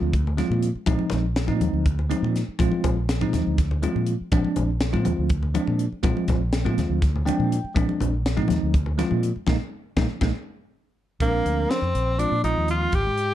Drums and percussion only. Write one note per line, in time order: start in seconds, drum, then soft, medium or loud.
0.03 low conga soft
0.13 kick medium
0.13 closed hi-hat medium
0.27 low conga medium
0.38 snare soft
0.38 closed hi-hat soft
0.38 muted conga medium
0.52 high conga medium
0.62 closed hi-hat medium
0.62 low conga soft
0.76 low conga soft
0.86 kick loud
0.86 closed hi-hat medium
0.86 muted conga medium
0.99 high conga medium
0.99 low conga soft
1.10 snare soft
1.10 closed hi-hat medium
1.10 low conga medium
1.36 snare loud
1.36 closed hi-hat medium
1.48 muted conga medium
1.61 closed hi-hat medium
1.61 high conga medium
1.74 low conga soft
1.86 kick loud
1.86 closed hi-hat medium
1.99 low conga medium
2.11 closed hi-hat medium
2.11 muted conga medium
2.24 high conga medium
2.36 snare soft
2.36 closed hi-hat medium
2.36 low conga soft
2.48 low conga soft
2.59 kick medium
2.59 closed hi-hat medium
2.59 muted conga medium
2.59 low conga soft
2.72 high conga medium
2.84 kick medium
2.84 closed hi-hat medium
2.84 low conga medium
2.96 low conga soft
3.09 snare loud
3.09 closed hi-hat medium
3.09 low conga soft
3.21 muted conga medium
3.33 snare soft
3.33 closed hi-hat medium
3.33 high conga medium
3.47 low conga soft
3.58 kick medium
3.58 snare soft
3.58 closed hi-hat medium
3.71 low conga medium
3.83 closed hi-hat medium
3.83 muted conga medium
3.96 high conga medium
4.07 closed hi-hat medium
4.32 kick loud
4.32 closed hi-hat medium
4.32 muted conga medium
4.44 high conga medium
4.44 low conga soft
4.56 closed hi-hat medium
4.56 low conga medium
4.80 snare loud
4.80 closed hi-hat medium
4.94 muted conga medium
5.05 closed hi-hat medium
5.05 high conga medium
5.17 low conga soft
5.29 kick medium
5.29 closed hi-hat medium
5.43 low conga medium
5.55 closed hi-hat soft
5.55 muted conga medium
5.67 high conga medium
5.79 closed hi-hat medium
5.79 low conga soft
5.92 low conga soft
6.03 kick loud
6.03 closed hi-hat medium
6.03 muted conga medium
6.17 high conga medium
6.17 low conga soft
6.28 kick medium
6.28 snare soft
6.28 closed hi-hat medium
6.28 low conga loud
6.53 snare loud
6.53 closed hi-hat medium
6.66 muted conga medium
6.78 snare soft
6.78 closed hi-hat medium
6.78 high conga medium
6.92 low conga soft
7.02 kick loud
7.02 snare soft
7.02 closed hi-hat medium
7.16 low conga medium
7.27 closed hi-hat medium
7.27 muted conga medium
7.40 high conga medium
7.52 closed hi-hat medium
7.52 low conga soft
7.65 low conga soft
7.76 kick loud
7.76 closed hi-hat medium
7.76 muted conga medium
7.89 high conga medium
7.89 low conga soft
8.00 closed hi-hat medium
8.00 low conga medium
8.26 snare loud
8.26 closed hi-hat medium
8.37 muted conga medium
8.48 snare soft
8.48 closed hi-hat medium
8.48 high conga medium
8.61 low conga soft
8.74 kick medium
8.74 closed hi-hat medium
8.86 low conga medium
8.99 snare soft
8.99 closed hi-hat medium
8.99 muted conga medium
9.11 high conga medium
9.23 closed hi-hat medium
9.23 low conga soft
9.36 low conga soft
9.47 kick medium
9.47 snare medium
9.47 muted conga medium
9.97 kick medium
9.97 snare loud
9.97 muted conga medium
10.21 kick loud
10.21 snare medium
10.21 muted conga medium
11.20 kick loud
11.20 closed hi-hat medium
11.46 closed hi-hat medium
11.71 snare loud
11.71 closed hi-hat medium
11.95 closed hi-hat medium
12.19 closed hi-hat medium
12.44 closed hi-hat medium
12.68 closed hi-hat soft
12.92 kick medium
12.92 closed hi-hat medium
13.18 closed hi-hat soft